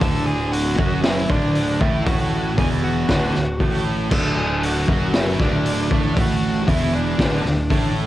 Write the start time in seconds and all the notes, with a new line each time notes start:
0.00 D1 D2 D3 A4 A5, kick, open hi-hat
0.26 G#4 G#5
0.52 F#4 F#5, open hi-hat
0.77 F#1 F#2 F#3, kick
1.04 E4 E5, snare, open hi-hat
1.29 D1 D2 D3 D4 D5, kick
1.55 open hi-hat
1.80 A1 A2 A3 E4 E5, kick
2.05 F#4 F#5, kick, open hi-hat
2.57 E1 E2 E3 G#4 G#5, kick, open hi-hat
2.83 F#4 F#5
3.09 D1 D2 D3, kick, snare, open hi-hat
3.34 D1 D2, snare
3.59 A1 A2 A3, kick, open hi-hat
4.11 D1 D2 D3 A4 A5, kick, crash
4.36 G#4 G#5
4.63 F#4 F#5, open hi-hat
4.87 F#1 F#2 F#3, kick
5.13 E4, snare, open hi-hat
5.18 E5
5.39 D1 D2 D3 D4 D5, kick, snare
5.65 open hi-hat
5.90 A1 A2 A3, kick
6.17 F#4 F#5, kick, open hi-hat
6.66 E1 E2 E3 E4 E5, kick, open hi-hat
6.93 D4 D5
7.19 D1 D2 D3, kick, snare, open hi-hat
7.45 D1 D2, snare
7.71 A1 A2 A3, kick, open hi-hat